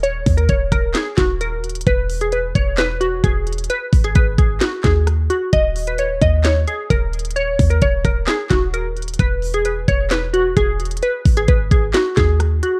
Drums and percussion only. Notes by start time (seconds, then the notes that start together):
0.03 closed hi-hat
0.26 kick, closed hi-hat, open hi-hat
0.38 closed hi-hat
0.49 kick, closed hi-hat
0.72 kick, cross-stick, closed hi-hat
0.94 snare, clap, closed hi-hat
1.17 kick, snare, clap, closed hi-hat
1.41 closed hi-hat
1.64 closed hi-hat
1.69 closed hi-hat
1.75 closed hi-hat
1.81 closed hi-hat
1.86 kick, closed hi-hat
2.09 closed hi-hat, open hi-hat
2.21 closed hi-hat
2.32 closed hi-hat
2.55 kick, closed hi-hat
2.78 snare, clap, closed hi-hat
3.01 closed hi-hat
3.24 kick, closed hi-hat
3.47 closed hi-hat
3.53 closed hi-hat
3.58 closed hi-hat
3.64 closed hi-hat
3.70 closed hi-hat
3.93 kick, closed hi-hat, open hi-hat
4.04 closed hi-hat
4.15 kick, closed hi-hat
4.38 kick, closed hi-hat
4.61 snare, clap, closed hi-hat
4.83 kick, snare, clap, closed hi-hat
5.07 cross-stick, closed hi-hat
5.30 closed hi-hat
5.53 kick, closed hi-hat
5.76 closed hi-hat, open hi-hat
5.87 closed hi-hat
5.98 closed hi-hat
6.22 kick, closed hi-hat
6.44 snare, clap, closed hi-hat
6.67 closed hi-hat
6.90 kick, closed hi-hat
7.13 closed hi-hat
7.19 closed hi-hat
7.25 closed hi-hat
7.30 closed hi-hat
7.36 closed hi-hat
7.59 kick, closed hi-hat, open hi-hat
7.71 closed hi-hat
7.82 kick, closed hi-hat
8.05 kick, cross-stick, closed hi-hat
8.27 snare, clap, closed hi-hat
8.50 kick, snare, clap, closed hi-hat
8.74 closed hi-hat
8.97 closed hi-hat
9.02 closed hi-hat
9.08 closed hi-hat
9.14 closed hi-hat
9.19 kick, closed hi-hat
9.42 closed hi-hat, open hi-hat
9.54 closed hi-hat
9.65 closed hi-hat
9.88 kick, closed hi-hat
10.10 snare, clap, closed hi-hat
10.34 closed hi-hat
10.57 kick, closed hi-hat
10.80 closed hi-hat
10.85 closed hi-hat
10.91 closed hi-hat
10.97 closed hi-hat
11.03 closed hi-hat
11.26 kick, closed hi-hat, open hi-hat
11.37 closed hi-hat
11.48 kick, closed hi-hat
11.71 kick, closed hi-hat
11.94 snare, clap, closed hi-hat
12.16 kick, snare, clap, closed hi-hat
12.40 cross-stick, closed hi-hat
12.63 closed hi-hat